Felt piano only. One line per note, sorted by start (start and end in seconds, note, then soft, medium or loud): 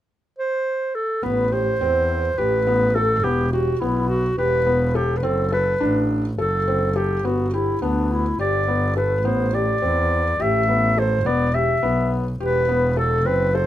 1.23 1.43 B3 medium
1.52 1.72 G4 medium
1.81 2.21 C4 medium
2.38 2.58 G4 medium
2.67 2.87 B3 medium
2.96 3.16 A4 medium
3.24 3.44 B3 medium
3.53 3.73 G4 medium
3.82 4.22 B3 medium
4.38 4.59 G4 medium
4.66 4.87 B3 medium
4.95 5.15 A4 medium
5.23 5.44 C4 medium
5.52 5.73 A4 medium
5.81 6.21 D4 medium
6.38 6.59 A4 medium
6.68 6.88 C4 medium
6.96 7.16 A4 medium
7.25 7.45 B3 medium
7.53 7.74 G4 medium
7.82 8.22 B3 medium
8.39 8.59 G4 medium
8.68 8.88 B3 medium
8.97 9.17 A4 medium
9.25 9.45 B3 medium
9.53 9.74 G4 medium
9.82 10.22 C4 medium
10.40 10.60 G4 medium
10.69 10.89 B3 medium
10.97 11.17 A4 medium
11.26 11.46 B3 medium
11.54 11.74 G4 medium
11.83 12.23 B3 medium
12.40 12.60 G4 medium
12.69 12.89 B3 medium
12.97 13.17 A4 medium
13.26 13.46 C4 medium
13.55 13.66 A4 medium